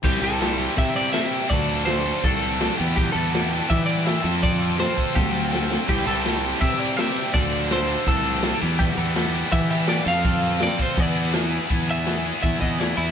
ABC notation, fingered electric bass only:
X:1
M:4/4
L:1/8
Q:1/4=164
K:Ephr
V:1 name="Fingered electric bass" clef=bass
C,, C,,3 C,4 | D,,4 C,,3 E,,- | E,, E,,3 E,3 F,,- | F,,3 z D,,4 |
C,, C,,3 C,4 | D,,4 C,,3 E,,- | E,, E,,3 E,3 F,,- | F,,3 z E,,4 |
E,,4 E,, E,,2 E,, |]